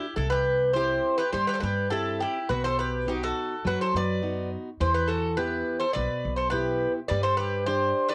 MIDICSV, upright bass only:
0, 0, Header, 1, 2, 480
1, 0, Start_track
1, 0, Key_signature, 1, "minor"
1, 0, Tempo, 578035
1, 142, Time_signature, 4, 2, 24, 8
1, 6765, End_track
2, 0, Start_track
2, 0, Title_t, "Upright bass"
2, 0, Program_c, 0, 32
2, 137, Note_on_c, 0, 36, 75
2, 815, Note_off_c, 0, 36, 0
2, 1104, Note_on_c, 0, 43, 71
2, 1190, Note_off_c, 0, 43, 0
2, 1351, Note_on_c, 0, 43, 74
2, 1856, Note_off_c, 0, 43, 0
2, 2073, Note_on_c, 0, 35, 78
2, 2745, Note_off_c, 0, 35, 0
2, 3034, Note_on_c, 0, 42, 73
2, 3117, Note_off_c, 0, 42, 0
2, 3273, Note_on_c, 0, 42, 77
2, 3776, Note_off_c, 0, 42, 0
2, 3989, Note_on_c, 0, 40, 87
2, 4660, Note_off_c, 0, 40, 0
2, 4950, Note_on_c, 0, 35, 75
2, 5033, Note_off_c, 0, 35, 0
2, 5189, Note_on_c, 0, 35, 74
2, 5690, Note_off_c, 0, 35, 0
2, 5901, Note_on_c, 0, 43, 80
2, 6569, Note_off_c, 0, 43, 0
2, 6765, End_track
0, 0, End_of_file